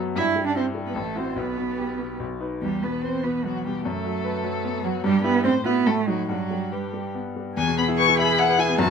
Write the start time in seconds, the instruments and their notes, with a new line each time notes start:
Already playing: grand piano F#2 F#3 B3 F#4
0.16 grand piano G2, cello E4, violin E5
0.36 grand piano G3
0.46 cello D4, violin D5
0.56 cello C4, grand piano E4, violin C5
0.75 grand piano G3
0.86 cello B3, violin B4
0.95 grand piano A1, cello A3, violin A4
1.16 cello C4, grand piano E4 F#4, violin C5
1.36 grand piano B1, cello B3, violin B4
1.57 grand piano B2
1.78 grand piano G4
1.98 grand piano B2
2.19 grand piano B1
2.40 grand piano D#4 B4
2.62 grand piano E2, cello G3, violin G4
2.83 grand piano B2, cello B3, violin B4
3.03 cello C4, grand piano B4, violin C5
3.24 grand piano B2, cello B3, violin B4
3.45 cello F#3, grand piano B3, violin F#4
3.65 grand piano B2, cello G3, violin G4
3.85 grand piano F#2, cello A3, violin A4
4.05 grand piano F#3
4.24 grand piano B4
4.44 grand piano F#3
4.65 grand piano B3
4.84 cello F#3, grand piano F#3, violin F#4
5.04 grand piano G2, cello G3, violin G4
5.24 cello B3, grand piano E4 G4, violin B4
5.44 grand piano A2, cello C4, violin C5
5.65 cello B3, grand piano E4 F#4, violin B4
5.86 grand piano A2, cello A3, violin A4
6.07 cello F#3, grand piano D#4 F#4, violin F#4
6.29 grand piano G2, cello F#3, violin F#4
6.50 grand piano G3
6.72 cello G3, violin G4, grand piano B4
6.93 grand piano G3
7.15 grand piano B3
7.36 grand piano G3
7.57 grand piano E2, cello G#4, violin G#5
7.67 grand piano B2
7.78 grand piano B3, violin B5
7.88 grand piano E4
7.98 grand piano B4, violin C#6
8.08 grand piano E4
8.19 grand piano E5, violin B5
8.28 grand piano B5
8.39 grand piano E5, violin F#5
8.48 grand piano B4
8.58 grand piano E4, violin G#5
8.69 grand piano B3
8.78 grand piano F#2, cello F#4, violin A5